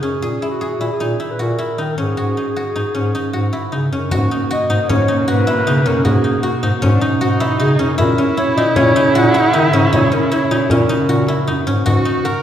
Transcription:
0.00 0.19 F#2 medium
0.00 1.97 C#4 medium
0.00 0.48 D#4 medium
0.00 1.39 F#4 medium
0.00 0.47 G#4 medium
0.22 0.39 A#2 medium
0.22 0.61 G#4 medium
0.42 0.80 E4 medium
0.51 0.87 F#4 medium
0.61 2.88 G#4 medium
0.79 0.88 A#2 medium
0.79 1.06 E4 medium
0.93 1.33 G#4 medium
0.99 1.17 A#2 medium
0.99 1.26 D#4 medium
1.20 1.58 E4 medium
1.31 1.43 B4 medium
1.39 1.56 A#2 medium
1.39 2.17 F#4 medium
1.39 2.02 A#4 medium
1.58 1.84 E4 medium
1.78 1.95 D#3 medium
1.78 2.37 D#4 medium
1.98 2.15 G#2 medium
1.98 2.94 C#4 medium
1.98 3.74 G#4 medium
2.17 2.34 G#2 medium
2.17 2.56 F#4 medium
2.37 2.75 D#4 soft
2.56 3.33 F#4 medium
2.75 2.84 G#2 medium
2.75 3.14 D#4 medium
2.95 3.12 G#2 medium
2.95 3.92 C#4 medium
3.15 3.59 D#4 medium
3.33 3.51 G#2 medium
3.33 4.11 F#4 medium
3.53 3.78 E4 medium
3.72 3.89 C#3 medium
3.72 4.31 D#4 medium
3.92 4.09 F#2 medium
3.92 4.89 C#4 medium
4.10 4.28 G#2 medium
4.10 12.43 A#2 medium
4.10 7.94 B2 medium
4.10 6.84 A#3 medium
4.10 7.95 F#4 medium
4.10 4.50 F#4 medium
4.10 4.48 F#4 medium
4.10 frame drum medium
4.31 4.69 D#4 medium
4.51 5.27 F#4 medium
4.51 4.90 D#5 medium
4.69 4.78 G#2 medium
4.69 5.08 D#4 medium
4.69 frame drum soft
4.88 5.06 G#2 medium
4.88 5.85 C#4 medium
4.88 5.19 C#5 medium
4.88 frame drum medium
5.08 5.53 D#4 medium
5.19 5.30 C#5 medium
5.28 5.45 G#2 medium
5.28 6.04 F#4 medium
5.28 5.89 B4 loud
5.47 5.73 E4 medium
5.47 frame drum soft
5.67 5.84 C#3 medium
5.67 6.24 D#4 medium
5.86 6.03 F#2 medium
5.86 6.82 C#4 medium
5.86 6.06 A#4 medium
6.05 6.23 G#2 medium
6.05 6.43 F#4 medium
6.05 6.42 G#4 medium
6.05 frame drum medium
6.24 6.62 D#4 medium
6.43 6.79 F#4 medium
6.43 7.21 F#4 medium
6.63 6.72 G#2 medium
6.63 7.01 D#4 medium
6.63 frame drum soft
6.82 7.00 G#2 loud
6.82 7.79 C#4 medium
6.82 6.95 C#4 medium
6.82 frame drum medium
6.95 7.04 D4 medium
7.01 7.46 D#4 medium
7.01 7.98 D#4 medium
7.21 7.38 G#2 medium
7.21 9.15 F#4 medium
7.40 7.66 E4 medium
7.40 frame drum soft
7.59 7.77 C#3 medium
7.59 8.04 D#4 medium
7.59 7.96 G#4 medium
7.79 7.96 F#2 medium
7.79 8.18 C#4 medium
7.98 8.16 A#2 medium
7.98 11.83 C#3 medium
7.98 8.37 E4 medium
7.98 11.63 E4 loud
7.98 9.91 G#4 medium
7.98 8.35 A#4 medium
7.98 frame drum medium
8.18 8.76 C#4 medium
8.37 8.63 E4 medium
8.37 8.56 C#5 medium
8.56 8.65 A#2 medium
8.56 8.95 D#4 medium
8.56 8.75 D#5 medium
8.56 frame drum soft
8.75 8.93 A#2 medium
8.75 9.73 C#4 medium
8.75 9.19 C#5 loud
8.75 frame drum medium
8.96 9.40 D#4 medium
9.14 9.32 A#2 loud
9.14 11.09 F#4 medium
9.14 9.55 F#5 loud
9.34 9.59 E4 medium
9.34 frame drum soft
9.53 9.71 D#3 loud
9.53 9.99 D#4 medium
9.53 9.93 E5 medium
9.72 9.90 G#2 medium
9.72 10.11 C#4 medium
9.92 10.09 A#2 medium
9.92 10.31 E4 medium
9.92 11.84 F#4 medium
9.92 10.15 C#5 medium
9.92 frame drum medium
10.12 10.70 C#4 medium
10.12 10.35 A#4 medium
10.31 10.57 E4 medium
10.31 10.72 C#5 medium
10.31 frame drum soft
10.50 10.59 A#2 medium
10.50 10.89 D#4 medium
10.69 10.87 A#2 loud
10.69 11.66 C#4 medium
10.69 11.48 A#4 medium
10.69 frame drum medium
10.89 11.34 D#4 medium
11.07 11.25 A#2 medium
11.07 11.85 F#4 medium
11.07 frame drum soft
11.27 11.53 E4 medium
11.27 frame drum soft
11.47 11.65 F#2 medium
11.47 12.05 D#4 medium
11.66 11.84 G#2 medium
11.66 12.43 C#4 medium
11.85 12.02 G#2 medium
11.85 12.43 B2 medium
11.85 12.25 F#4 medium
11.85 12.27 F#4 medium
11.85 12.43 F#4 medium
11.85 frame drum medium
12.05 12.43 D#4 medium
12.25 12.43 F#4 medium
12.25 12.43 A#4 loud

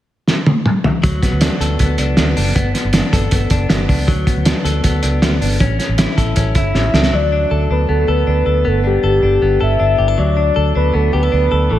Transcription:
0.28 snare medium
0.46 high tom medium
0.66 mid tom medium
0.84 floor tom medium
1.03 1.19 D2 medium
1.03 2.56 F#3 medium
1.03 kick loud
1.03 closed hi-hat medium
1.22 1.80 B3 medium
1.22 kick medium
1.22 snare soft
1.22 closed hi-hat medium
1.32 1.48 D2 medium
1.41 1.98 D4 medium
1.41 snare loud
1.41 closed hi-hat loud
1.60 1.76 D2 medium
1.60 2.77 A4 medium
1.60 closed hi-hat medium
1.79 1.95 D2 loud
1.79 2.17 B3 medium
1.79 kick medium
1.79 closed hi-hat medium
1.98 2.14 C#2 medium
1.98 2.36 D4 medium
1.98 closed hi-hat medium
2.17 2.33 D2 medium
2.17 2.55 B3 medium
2.17 snare medium
2.17 closed hi-hat medium
2.37 2.52 F#1 medium
2.37 2.93 D4 medium
2.37 open hi-hat medium
2.55 2.71 G1 medium
2.55 2.74 B3 medium
2.55 kick loud
2.55 closed hi-hat medium
2.74 3.31 B3 medium
2.74 snare soft
2.74 closed hi-hat medium
2.84 3.00 G1 medium
2.93 3.50 D4 medium
2.93 snare loud
2.93 closed hi-hat loud
3.13 3.28 G1 medium
3.13 4.30 A4 medium
3.13 kick medium
3.13 closed hi-hat medium
3.31 3.47 G1 medium
3.31 3.68 B3 medium
3.31 kick medium
3.31 closed hi-hat medium
3.50 3.66 F#1 medium
3.50 3.87 D4 medium
3.50 kick medium
3.50 closed hi-hat medium
3.69 3.85 G1 medium
3.69 4.11 B3 medium
3.69 snare medium
3.69 closed hi-hat medium
3.88 4.05 C#2 medium
3.88 4.11 D4 medium
3.88 kick medium
3.88 open hi-hat medium
4.08 4.23 D2 medium
4.08 5.60 F#3 medium
4.08 kick loud
4.08 closed hi-hat medium
4.27 4.82 B3 medium
4.27 kick medium
4.27 closed hi-hat medium
4.36 4.52 D2 medium
4.45 5.01 D4 medium
4.45 snare loud
4.45 closed hi-hat loud
4.65 4.80 D2 loud
4.65 6.17 A4 medium
4.65 closed hi-hat medium
4.84 5.00 D2 medium
4.84 5.21 B3 medium
4.84 kick medium
4.84 closed hi-hat medium
5.02 5.19 C#2 medium
5.02 5.40 D4 medium
5.02 closed hi-hat medium
5.22 5.38 D2 medium
5.22 5.60 B3 medium
5.22 snare medium
5.22 closed hi-hat medium
5.41 5.57 G1 medium
5.41 5.64 D4 medium
5.41 open hi-hat medium
5.60 5.76 A1 medium
5.60 5.78 C#4 medium
5.60 kick loud
5.60 closed hi-hat medium
5.79 6.36 C#4 soft
5.79 snare soft
5.79 closed hi-hat medium
5.89 6.04 A1 medium
5.98 6.55 E4 medium
5.98 snare loud
5.98 closed hi-hat loud
6.17 6.33 A1 medium
6.17 7.51 A4 medium
6.17 kick medium
6.17 closed hi-hat medium
6.36 6.52 A1 medium
6.36 6.74 C#4 medium
6.36 kick medium
6.36 closed hi-hat medium
6.55 6.71 G1 medium
6.55 6.93 E4 medium
6.55 7.16 E5 loud
6.55 kick medium
6.55 closed hi-hat medium
6.74 6.90 A1 medium
6.74 7.17 C#4 medium
6.74 snare soft
6.93 7.09 C#2 medium
6.93 7.04 D4 medium
6.93 snare medium
7.03 7.17 E4 soft
7.03 snare medium
7.13 7.44 D2 medium
7.13 8.65 F#3 medium
7.13 7.71 D5 loud
7.32 7.70 D4 medium
7.51 7.67 D2 medium
7.51 8.08 A4 medium
7.70 7.86 D2 medium
7.70 8.27 D4 medium
7.70 7.80 B4 medium
7.89 8.05 D2 medium
7.89 8.64 B3 medium
7.89 8.11 A4 medium
8.08 8.24 D2 medium
8.08 8.46 A4 medium
8.08 8.28 B4 loud
8.27 8.43 D2 medium
8.27 8.84 D4 medium
8.27 8.69 B4 medium
8.46 8.66 D2 medium
8.46 9.03 A4 medium
8.65 8.96 G1 medium
8.65 9.42 B3 medium
8.65 8.85 A4 medium
8.84 9.22 D4 medium
8.84 9.03 G4 medium
9.03 9.19 G1 medium
9.03 9.58 G4 medium
9.03 9.60 A4 medium
9.23 9.38 G1 medium
9.23 9.78 D4 medium
9.42 9.57 G1 medium
9.42 10.22 B3 medium
9.61 9.77 G1 medium
9.61 9.98 A4 medium
9.61 10.15 E5 loud
9.80 9.96 G1 medium
9.80 10.22 D4 medium
9.98 10.15 G1 medium
9.98 10.08 G4 medium
10.08 10.22 A4 soft
10.18 10.49 D2 medium
10.18 11.70 F#3 medium
10.18 10.72 D5 loud
10.37 10.74 D4 soft
10.56 10.72 D2 medium
10.56 11.13 A4 medium
10.75 10.91 D2 medium
10.75 11.31 D4 medium
10.75 10.96 B4 loud
10.94 11.10 D2 medium
10.94 11.74 B3 medium
10.94 11.15 A4 loud
11.13 11.29 D2 medium
11.13 11.23 G4 medium
11.13 11.33 B4 medium
11.23 11.50 A4 medium
11.32 11.49 D2 medium
11.32 11.74 D4 medium
11.32 11.73 B4 medium
11.52 11.68 D2 medium
11.52 11.79 A4 medium
11.70 11.79 A1 medium
11.70 11.79 E3 medium
11.70 11.79 A4 medium

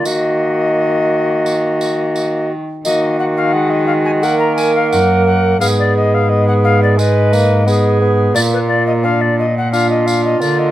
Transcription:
0.05 2.61 D#3 medium
0.05 2.48 A#3 medium
0.05 2.53 F#4 medium
0.05 2.50 D#5 medium
0.05 tambourine medium
1.46 tambourine soft
1.81 tambourine soft
2.16 tambourine soft
2.85 4.94 D#3 medium
2.85 3.50 A#3 medium
2.85 4.24 F#4 medium
2.85 3.17 D#5 loud
2.85 tambourine medium
3.19 3.25 F#5 medium
3.37 3.54 F5 medium
3.53 4.26 G#3 medium
3.53 3.72 F#5 medium
3.70 3.86 D#5 medium
3.87 3.93 F5 medium
4.05 4.11 G#5 medium
4.22 5.61 A#3 medium
4.22 5.60 A#4 medium
4.22 4.39 F#5 loud
4.22 tambourine soft
4.39 4.55 A#5 medium
4.56 4.74 G#5 medium
4.56 tambourine medium
4.75 4.90 F5 medium
4.91 5.61 F#2 medium
4.91 5.25 F#5 loud
4.91 tambourine medium
5.26 5.60 F#5 loud
5.60 8.32 G#2 medium
5.60 6.28 B3 medium
5.60 7.01 G#4 medium
5.60 5.66 F5 loud
5.60 tambourine medium
5.79 5.96 D5 medium
5.96 6.16 D#5 medium
6.14 6.31 F5 medium
6.29 7.00 B3 medium
6.29 6.47 D#5 medium
6.48 6.54 F#5 medium
6.64 6.81 F5 loud
6.83 6.97 D5 medium
6.98 7.34 G#3 medium
6.98 7.66 B4 medium
6.98 7.99 D#5 medium
6.98 tambourine medium
7.33 7.66 A#3 medium
7.33 tambourine soft
7.66 8.00 B3 medium
7.66 8.37 G#4 medium
7.66 tambourine soft
8.01 8.37 B3 medium
8.35 10.38 A#2 medium
8.35 9.06 A#3 medium
8.35 9.45 F4 medium
8.35 8.41 D5 loud
8.35 tambourine medium
8.53 8.59 B4 medium
8.67 8.85 D5 loud
8.87 8.93 D#5 medium
9.03 9.49 D4 medium
9.03 9.23 F5 loud
9.21 9.38 D5 medium
9.39 9.55 D#5 medium
9.57 9.72 F#5 medium
9.72 10.43 D4 medium
9.72 10.71 F4 medium
9.72 9.89 F5 loud
9.72 tambourine medium
9.90 10.08 D#5 medium
10.06 10.24 F5 medium
10.06 tambourine medium
10.25 10.40 D#5 medium
10.41 10.71 D3 medium
10.41 10.71 A#3 medium
10.41 10.60 D5 medium
10.41 tambourine soft
10.59 10.71 D#5 medium

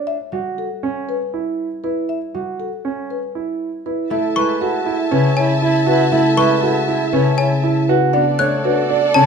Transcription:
0.00 2.21 A3 medium
0.00 0.15 D4 medium
0.00 0.15 C#5 medium
0.07 0.40 E5 medium
0.32 2.33 G3 medium
0.32 0.66 F#4 medium
0.58 0.91 A4 medium
0.83 1.16 C#4 medium
1.09 1.41 B4 medium
1.34 1.67 E4 soft
1.84 2.17 E4 soft
1.84 2.17 B4 soft
2.09 2.42 E5 medium
2.34 4.13 G3 soft
2.34 2.67 F#4 soft
2.60 2.93 A4 soft
2.85 3.18 C#4 medium
3.10 3.43 B4 soft
3.35 3.68 E4 soft
3.86 4.10 E4 soft
3.86 4.19 B4 soft
4.10 6.11 A3 medium
4.10 4.44 E4 medium
4.10 4.29 E4 soft
4.10 7.85 E5 medium
4.10 4.44 E5 medium
4.10 7.85 A5 medium
4.36 6.36 G#3 medium
4.36 4.55 E4 soft
4.36 4.69 B4 medium
4.36 4.69 C#6 medium
4.61 4.80 E4 medium
4.61 4.94 F#4 medium
4.61 4.94 A4 medium
4.86 5.19 E4 medium
4.86 5.05 E4 medium
5.11 7.12 C#3 medium
5.11 5.44 C#4 medium
5.11 5.31 E4 medium
5.11 5.45 B4 medium
5.37 5.55 E4 medium
5.37 5.70 C#5 medium
5.37 5.70 G#5 medium
5.62 5.95 E4 medium
5.62 5.81 E4 medium
5.86 6.06 E4 medium
5.86 6.20 F#4 medium
5.86 6.20 B4 medium
6.12 8.38 A3 medium
6.12 6.45 E4 medium
6.12 6.31 E4 medium
6.12 6.45 E5 medium
6.37 8.16 G#3 medium
6.37 6.56 E4 medium
6.37 6.70 B4 medium
6.37 6.71 C#6 medium
6.62 6.81 E4 medium
6.62 6.96 F#4 medium
6.62 6.95 A4 medium
6.88 7.21 E4 medium
6.88 7.07 E4 medium
7.12 8.16 C#3 medium
7.12 7.46 C#4 medium
7.12 7.32 E4 medium
7.12 7.46 B4 medium
7.38 7.57 E4 soft
7.38 7.71 C#5 medium
7.38 7.71 G#5 medium
7.64 7.97 E4 medium
7.64 7.82 E4 soft
7.88 8.22 F#4 medium
7.88 8.22 B4 medium
8.13 9.26 B3 medium
8.13 8.47 D4 medium
8.13 8.33 D4 soft
8.13 9.26 A4 medium
8.13 9.26 D5 medium
8.13 8.47 F#5 medium
8.39 9.26 A3 medium
8.39 8.57 D4 soft
8.39 8.72 C#5 medium
8.39 8.72 F#6 medium
8.64 8.82 D4 medium
8.64 8.98 F#4 medium
8.64 8.98 B4 medium
8.90 9.23 D4 medium
8.90 9.08 D4 medium
9.14 9.26 C#3 medium
9.14 9.26 C#4 medium
9.14 9.26 D4 medium
9.14 9.26 C#5 medium
9.14 9.26 A5 medium

